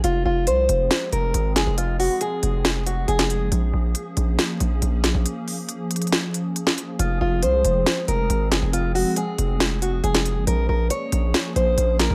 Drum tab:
HH |x-------x---x---x---x---x---x---|x---o---x---x---x---x---x-x-x---|x-------x---x---x---x---x---x---|x---o---x---xxxxx---x---x---x---|
SD |----------------o-----------o---|----------------o---------o-----|----------------o-----------o---|----------------o---------o-----|

HH |x-------x---x---x---x---x---x---|x---o---x---x---x---x---x-x-x---|x-------x---x---x---x---x---x---|
SD |----------------o-----------o---|----------------o---------o-----|----------------o-----------o---|